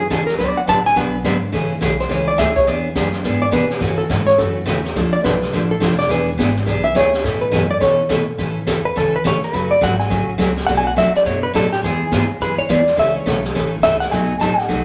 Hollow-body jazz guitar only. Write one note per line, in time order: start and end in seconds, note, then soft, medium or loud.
0.00 0.10 G#4 medium
0.11 0.26 A4 medium
0.27 0.38 A#4 medium
0.39 0.48 B4 medium
0.48 0.57 D5 medium
0.57 0.67 F#5 medium
0.69 0.85 A5 loud
0.86 0.97 G#5 loud
0.97 1.43 F#5 medium
2.00 2.11 C5 medium
2.11 2.27 C#5 medium
2.28 2.38 D5 medium
2.38 2.55 E5 loud
2.56 2.67 C#5 medium
2.67 2.78 D5 medium
3.42 3.52 D5 medium
3.53 3.96 B4 medium
3.98 4.25 A4 medium
4.27 4.37 C#5 loud
4.38 4.81 A4 medium
5.13 5.23 D5 loud
5.24 5.67 B4 medium
5.71 5.97 A4 medium
5.99 6.11 D5 loud
6.11 6.57 B4 medium
6.84 6.95 E5 loud
6.96 7.39 C#5 medium
7.41 7.68 B4 medium
7.71 7.81 D5 loud
7.81 8.24 C#5 medium